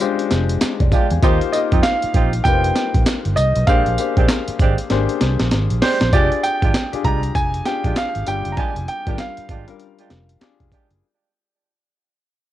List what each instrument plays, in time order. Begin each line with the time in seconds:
0.00 grand piano G#3 D4 F4 G4 C5, closed hi-hat, tambourine
0.19 closed hi-hat
0.31 fingered electric bass F1, snare, closed hi-hat, tambourine
0.49 closed hi-hat
0.61 muted fingered electric bass stroke, snare, clap, closed hi-hat, tambourine
0.80 fingered electric bass F1, grand piano D5, kick, closed hi-hat
0.92 horn section G#3 D4 F4 G4, grand piano F5, kick, closed hi-hat, tambourine
1.10 fingered electric bass E2, grand piano G#5, closed hi-hat
1.22 fingered electric bass D#2, grand piano A#3 D#4 F4 G4 C5, horn section C4 D#4 F4 G4, kick, closed hi-hat, tambourine
1.41 closed hi-hat
1.52 grand piano A#3 D#4 F4 G4 A#4 D#5, closed hi-hat, tambourine
1.72 fingered electric bass F2, horn section C4 D#4 F4 G4, kick, closed hi-hat
1.83 grand piano F5, snare, clap, closed hi-hat, tambourine
2.02 muted fingered electric bass stroke, closed hi-hat
2.14 fingered electric bass A#1, horn section C4 D#4 F4 G4, kick, closed hi-hat
2.33 closed hi-hat
2.44 fingered electric bass F1, grand piano A#3 D#4 F4 G4 B4 G5, kick, closed hi-hat, tambourine
2.53 grand piano C5
2.64 closed hi-hat
2.76 snare, closed hi-hat, tambourine
2.94 fingered electric bass A#1, kick, closed hi-hat
3.06 snare, clap, closed hi-hat, tambourine
3.25 fingered electric bass G1, closed hi-hat
3.36 fingered electric bass C2, grand piano D#5, closed hi-hat, tambourine
3.56 fingered electric bass B1, closed hi-hat
3.67 fingered electric bass A#1, horn section G#3 C4 D4 G4, grand piano A#3 D4 G4 G#4 C5 F5, kick, closed hi-hat, tambourine
3.86 fingered electric bass A#1, closed hi-hat
3.98 grand piano A#3 D4 G4 G#4 C5, closed hi-hat, tambourine
4.17 fingered electric bass A#1, horn section G#3 C4 D4 G4, kick, closed hi-hat
4.29 snare, clap, closed hi-hat, tambourine
4.48 muted fingered electric bass stroke, closed hi-hat
4.59 fingered electric bass G#1, horn section G#3 C4 D4 G4, kick, closed hi-hat
4.78 closed hi-hat
4.90 fingered electric bass G#1, grand piano A#3 D4 G4 G#4 C5, snare, closed hi-hat
5.09 closed hi-hat
5.21 fingered electric bass C2, snare, closed hi-hat
5.40 fingered electric bass A#1, snare, closed hi-hat
5.51 fingered electric bass G#1, snare, closed hi-hat
5.70 fingered electric bass A#1, closed hi-hat
5.82 horn section G#3 C4 D4 G4, grand piano C5, snare, open hi-hat
6.01 fingered electric bass A#1, snare, closed hi-hat
6.12 fingered electric bass F1, horn section G#3 D4 F4 G4, grand piano D4 F4 G4 G#4 D5, kick, closed hi-hat, tambourine
6.32 closed hi-hat
6.43 grand piano G5, closed hi-hat, tambourine
6.61 fingered electric bass G#1, horn section G#3 D4 F4 G4, kick, closed hi-hat
6.74 snare, clap, closed hi-hat, tambourine
6.93 grand piano D4 F4 G4 G#4, muted fingered electric bass stroke, closed hi-hat
7.04 fingered electric bass C2, horn section G#3 D4 F4 G4, grand piano A#5, kick, closed hi-hat
7.23 closed hi-hat
7.35 fingered electric bass F1, grand piano G#5, kick, closed hi-hat, tambourine
7.54 closed hi-hat
7.66 grand piano D4 F4 G4 G#4 G5, snare, closed hi-hat, tambourine
7.84 fingered electric bass A#1, horn section G#3 D4 F4 G4, kick, closed hi-hat
7.96 grand piano F5, snare, clap, closed hi-hat, tambourine
8.15 fingered electric bass G#1, closed hi-hat
8.26 fingered electric bass G1, grand piano G3 D4 F4 G4 G5, closed hi-hat, tambourine
8.45 fingered electric bass F#1, closed hi-hat
8.52 grand piano A#5
8.57 horn section G#3 D4 F4 G4, grand piano G#5, kick, closed hi-hat
8.76 fingered electric bass F1, closed hi-hat
8.88 grand piano G5, closed hi-hat
9.07 fingered electric bass G#1, grand piano G3 D4 F4 A#4, horn section G#3 D4 F4 G4, kick, closed hi-hat
9.18 grand piano F5, snare, clap, closed hi-hat
9.37 muted fingered electric bass stroke, closed hi-hat
9.49 fingered electric bass G#1, horn section G#3 D4 F4 G4, kick, closed hi-hat
9.68 grand piano G3 D4 F4 A#4, closed hi-hat
9.80 closed hi-hat
9.98 horn section G#3 D4 F4 G4, closed hi-hat
10.10 fingered electric bass F1, snare, closed hi-hat
10.29 closed hi-hat
10.41 grand piano D4 F4 G4 G#4, muted fingered electric bass stroke, snare, clap, closed hi-hat
10.60 fingered electric bass F1, kick, closed hi-hat
10.71 horn section G#3 D4 F4 G4, kick, closed hi-hat
10.90 fingered electric bass F#1, closed hi-hat